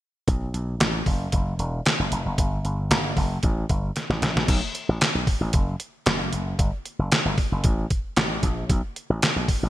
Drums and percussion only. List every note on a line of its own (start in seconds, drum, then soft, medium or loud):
0.28 kick loud
0.28 closed hi-hat medium
0.54 closed hi-hat medium
0.80 snare loud
0.80 clap medium
0.80 closed hi-hat medium
1.06 kick loud
1.06 open hi-hat medium
1.32 kick loud
1.32 closed hi-hat medium
1.59 closed hi-hat medium
1.86 snare loud
1.86 clap medium
1.86 closed hi-hat medium
2.12 closed hi-hat medium
2.38 kick loud
2.38 closed hi-hat medium
2.65 closed hi-hat medium
2.91 snare loud
2.91 clap medium
2.91 closed hi-hat medium
3.17 kick loud
3.17 open hi-hat medium
3.43 kick loud
3.43 closed hi-hat medium
3.69 kick medium
3.69 closed hi-hat medium
3.96 snare medium
3.96 closed hi-hat medium
4.11 snare medium
4.22 snare medium
4.22 closed hi-hat medium
4.37 snare medium
4.48 kick loud
4.48 closed hi-hat medium
4.48 crash loud
4.75 closed hi-hat medium
5.01 snare loud
5.01 clap loud
5.01 closed hi-hat loud
5.27 kick loud
5.27 open hi-hat medium
5.53 kick loud
5.53 closed hi-hat medium
5.80 closed hi-hat medium
6.06 snare loud
6.06 clap medium
6.06 closed hi-hat medium
6.33 closed hi-hat medium
6.59 kick loud
6.59 closed hi-hat medium
6.85 closed hi-hat medium
7.12 snare loud
7.12 clap medium
7.12 closed hi-hat medium
7.38 kick medium
7.38 open hi-hat medium
7.64 kick loud
7.64 closed hi-hat loud
7.90 kick medium
7.90 closed hi-hat medium
8.16 snare loud
8.16 clap loud
8.16 closed hi-hat medium
8.43 kick loud
8.43 closed hi-hat medium
8.70 kick loud
8.70 closed hi-hat medium
8.96 closed hi-hat medium
9.22 snare loud
9.22 clap medium
9.22 closed hi-hat loud
9.48 kick medium
9.48 open hi-hat medium